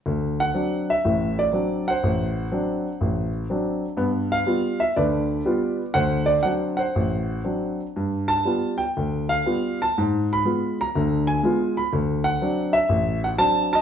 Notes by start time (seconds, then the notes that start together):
0.06 D2
0.40 F#5
0.54 F#3 C4 D4
0.90 E5
1.05 A1 A2
1.39 D5
1.53 F#3 C4 D4
1.88 C5 F#5
2.03 A1
2.52 F#3 C4 D4
3.01 A1
3.50 F#3 C4 D4
3.97 G2 B3
4.32 F5
4.47 G3 B3 F4
4.80 E5
4.96 D2 D3 B4 D5
5.45 G3 B3 F4
5.94 D2 C5 F#5
6.26 D5
6.43 F#3 C4 D4 F#5
6.77 C5 F#5
6.96 A1
7.44 F#3 C4 D4
7.96 G2
8.28 A5
8.45 G3 B3 F4
8.78 G5
8.97 D2
9.29 F5
9.46 G3 B3 F4
9.82 A5
9.98 G#2
10.33 B5
10.45 G#3 B3 F4
10.81 A#5
10.95 D2 D3
11.27 G#5
11.43 G#3 B3 F4
11.77 B5
11.93 D2
12.24 F#5
12.42 F#3 C4 D4
12.73 E5
12.89 A1
13.24 F#5
13.38 F#3 C4 D4 A5
13.73 D#5 A5